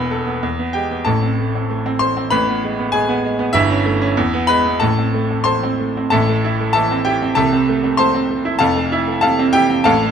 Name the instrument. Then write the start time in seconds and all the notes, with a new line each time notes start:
grand piano
Already playing: E1 E2 B3 B4 B5
0.11 A4
0.27 B3
0.43 E2
0.59 B3
0.73 G#3 G4 G5
0.91 B3
1.05 A1 A2 A4 A5
1.23 C4
1.39 A3
1.55 C4
1.70 A3
1.86 C4
1.99 A3 C5 C6
2.17 C4
2.30 A1 A2 B4 B5
2.48 B3
2.64 G#3
2.79 B3
2.92 G#3 G#4 G#5
3.09 B3
3.24 G#3
3.39 B3
3.53 G1 G2 E4 E5
3.70 C#4
3.86 A3
4.01 C#4
4.17 E2
4.34 B3
4.47 G#3 B4 B5
4.66 B3
4.80 A1 A2 A4 A5
4.98 C4
5.14 A3
5.31 C4
5.44 A3 C5 A5 C6
5.63 C4
5.80 A3
5.97 C4
6.10 A1 A2 A4 E5 A5
6.29 A3
6.44 E4
6.60 A3
6.73 E3 A4 E5 A5
6.91 C4
7.05 E4 G4 G5
7.22 C4
7.35 C2 C3 A4 E5 A5
7.53 C4
7.69 A3
7.84 C4
7.97 A3 C5 A5 C6
8.15 C4
8.31 A3
8.45 E4
8.59 F1 F2 A4 F5 A5
8.77 A3
8.92 E4
9.08 A3
9.21 C3 A4 F5 A5
9.39 C4
9.53 E4 G4 G5
9.70 C4
9.84 A1 A2 A4 F5 A5
10.03 A3